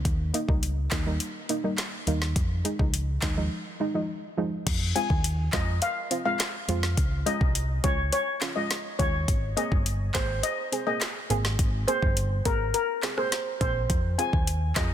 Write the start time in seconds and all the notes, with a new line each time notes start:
0.05 D#2, kick, closed hi-hat
0.34 A#3 D#4, closed hi-hat
0.48 C#2 G3 A#3 D#4, kick
0.63 closed hi-hat
0.91 D#2 A#3 D#4, kick, snare, clap, closed hi-hat
1.06 G3 A#3 D#4
1.20 closed hi-hat
1.49 A#3 D#4, closed hi-hat
1.64 G3 A#3 D#4
1.78 snare, clap, closed hi-hat
2.07 D#2 G3 A#3 D#4, closed hi-hat
2.22 snare
2.36 F2, kick, closed hi-hat
2.64 G#3 D#4, closed hi-hat
2.79 C#2 F3 G#3 D#4, kick
2.94 closed hi-hat
3.22 D#2 G#3 D#4, kick, snare, clap, closed hi-hat
3.37 F3 G#3 D#4
3.80 G#3 D#4
3.94 F3 G#3 D#4
4.37 F3 G#3 D#4
4.67 F2, kick, closed hi-hat, crash
4.95 G#3 C4 F4 G#5, closed hi-hat
5.10 D#2, kick
5.24 closed hi-hat
5.53 F2 G#3 C4 F4 D#5, kick, snare, clap, closed hi-hat
5.82 F5, closed hi-hat
6.11 C4 F4, closed hi-hat
6.25 G#3 C4 F4 F5
6.39 snare, clap, closed hi-hat
6.68 F2 G#3 C4 F4, closed hi-hat
6.83 snare
6.97 C#2, kick, closed hi-hat
7.26 G#3 C#4 F4 D#5, closed hi-hat
7.41 C2, kick
7.55 closed hi-hat
7.83 C#2 G#3 C#4 F4 C#5, kick, closed hi-hat
8.13 C#5, closed hi-hat
8.41 C#4 F4, snare, clap, closed hi-hat
8.56 G#3 C#4 F4 D#5
8.71 snare, closed hi-hat
8.99 D#2 G#3 C#4 F4 C#5, kick, closed hi-hat
9.28 G#1, kick, closed hi-hat
9.57 A#3 C4 G#4 D#5, closed hi-hat
9.72 G1, kick
9.86 closed hi-hat
10.14 G#1 A#3 C4 G#4 C5, kick, snare, clap, closed hi-hat
10.43 D#5, closed hi-hat
10.72 C4 G#4, closed hi-hat
10.86 A#3 C4 G#4 D#5
11.01 snare, clap, closed hi-hat
11.30 G#1 A#3 C4 G#4, closed hi-hat
11.45 snare
11.59 G#1, kick, closed hi-hat
11.88 A#3 C4 G#4 C5, closed hi-hat
12.02 G1, kick
12.17 closed hi-hat
12.45 G#1 A#3 C4 G#4 A#4, kick, closed hi-hat
12.74 A#4, closed hi-hat
13.03 C4 G#4, snare, clap, closed hi-hat
13.17 A#3 C4 G#4 C5, cross-stick
13.32 snare, closed hi-hat
13.61 A#1 A#3 C4 G#4 C5, kick, closed hi-hat
13.90 F2, kick, closed hi-hat
14.18 C4 F4 G#4 G#5, closed hi-hat
14.33 D#2, kick
14.47 closed hi-hat
14.76 F2 C4 F4 G#4 D#5, kick, snare, clap, closed hi-hat